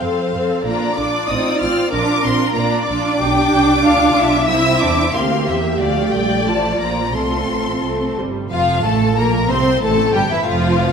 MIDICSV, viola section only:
0, 0, Header, 1, 2, 480
1, 0, Start_track
1, 0, Key_signature, -1, "major"
1, 0, Tempo, 639659
1, 489, Time_signature, 2, 2, 24, 8
1, 2890, Tempo, 652174
1, 4330, Tempo, 674916
1, 6250, Tempo, 649351
1, 8037, End_track
2, 0, Start_track
2, 0, Title_t, "Viola section"
2, 0, Program_c, 0, 48
2, 20, Note_on_c, 0, 60, 43
2, 20, Note_on_c, 0, 69, 43
2, 250, Note_off_c, 0, 60, 0
2, 250, Note_off_c, 0, 69, 0
2, 259, Note_on_c, 0, 69, 44
2, 260, Note_on_c, 0, 60, 42
2, 490, Note_off_c, 0, 60, 0
2, 490, Note_off_c, 0, 69, 0
2, 498, Note_on_c, 0, 62, 47
2, 498, Note_on_c, 0, 65, 54
2, 728, Note_off_c, 0, 62, 0
2, 728, Note_off_c, 0, 65, 0
2, 735, Note_on_c, 0, 65, 42
2, 741, Note_on_c, 0, 62, 44
2, 966, Note_off_c, 0, 65, 0
2, 969, Note_off_c, 0, 62, 0
2, 974, Note_on_c, 0, 65, 49
2, 977, Note_on_c, 0, 60, 51
2, 1206, Note_off_c, 0, 65, 0
2, 1208, Note_off_c, 0, 60, 0
2, 1223, Note_on_c, 0, 65, 53
2, 1224, Note_on_c, 0, 60, 54
2, 1449, Note_off_c, 0, 65, 0
2, 1452, Note_off_c, 0, 60, 0
2, 1457, Note_on_c, 0, 62, 55
2, 1458, Note_on_c, 0, 65, 55
2, 1685, Note_off_c, 0, 65, 0
2, 1687, Note_off_c, 0, 62, 0
2, 1694, Note_on_c, 0, 62, 46
2, 1694, Note_on_c, 0, 65, 48
2, 1922, Note_off_c, 0, 62, 0
2, 1924, Note_off_c, 0, 65, 0
2, 1931, Note_on_c, 0, 62, 54
2, 1933, Note_on_c, 0, 65, 55
2, 2160, Note_off_c, 0, 65, 0
2, 2163, Note_off_c, 0, 62, 0
2, 2169, Note_on_c, 0, 65, 57
2, 2172, Note_on_c, 0, 62, 58
2, 2394, Note_off_c, 0, 62, 0
2, 2403, Note_on_c, 0, 62, 66
2, 2404, Note_off_c, 0, 65, 0
2, 2405, Note_on_c, 0, 67, 58
2, 2856, Note_off_c, 0, 67, 0
2, 2891, Note_on_c, 0, 65, 64
2, 3338, Note_off_c, 0, 62, 0
2, 3361, Note_off_c, 0, 65, 0
2, 3371, Note_on_c, 0, 64, 60
2, 3372, Note_on_c, 0, 60, 60
2, 3841, Note_off_c, 0, 60, 0
2, 3841, Note_off_c, 0, 64, 0
2, 3847, Note_on_c, 0, 58, 55
2, 3847, Note_on_c, 0, 67, 60
2, 4327, Note_off_c, 0, 58, 0
2, 4329, Note_on_c, 0, 57, 52
2, 4790, Note_off_c, 0, 57, 0
2, 4796, Note_on_c, 0, 65, 47
2, 4798, Note_off_c, 0, 67, 0
2, 4798, Note_on_c, 0, 53, 49
2, 5273, Note_off_c, 0, 65, 0
2, 5281, Note_on_c, 0, 57, 41
2, 5281, Note_on_c, 0, 65, 39
2, 5282, Note_off_c, 0, 53, 0
2, 5759, Note_off_c, 0, 65, 0
2, 5764, Note_off_c, 0, 57, 0
2, 5772, Note_on_c, 0, 57, 51
2, 5996, Note_off_c, 0, 57, 0
2, 6018, Note_on_c, 0, 55, 44
2, 6250, Note_on_c, 0, 53, 67
2, 6253, Note_off_c, 0, 55, 0
2, 6476, Note_off_c, 0, 53, 0
2, 6496, Note_on_c, 0, 57, 64
2, 6732, Note_off_c, 0, 57, 0
2, 6735, Note_on_c, 0, 58, 70
2, 6972, Note_off_c, 0, 58, 0
2, 6982, Note_on_c, 0, 60, 78
2, 7214, Note_off_c, 0, 60, 0
2, 7231, Note_on_c, 0, 57, 71
2, 7457, Note_off_c, 0, 57, 0
2, 7460, Note_on_c, 0, 55, 58
2, 7507, Note_off_c, 0, 55, 0
2, 7587, Note_on_c, 0, 52, 53
2, 7632, Note_off_c, 0, 52, 0
2, 7704, Note_on_c, 0, 53, 76
2, 8037, Note_off_c, 0, 53, 0
2, 8037, End_track
0, 0, End_of_file